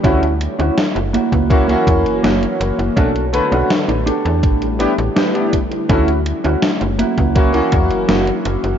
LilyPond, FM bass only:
\new Staff \with { instrumentName = "FM bass" } { \clef bass \time 4/4 \key d \major \tempo 4 = 82 d,8 r16 d,16 r16 fis,,16 r16 cis,8 r16 e,16 fis,,16 fis,,16 r16 fis,,16 fis,,16 | b,,8 r16 b,,16 r16 a,,16 r16 e,16 a,,8 r16 a,,16 r4 | d,8 r16 d,16 r16 fis,,16 r16 cis,8 r16 e,16 fis,,16 fis,,16 r16 fis,,16 fis,,16 | }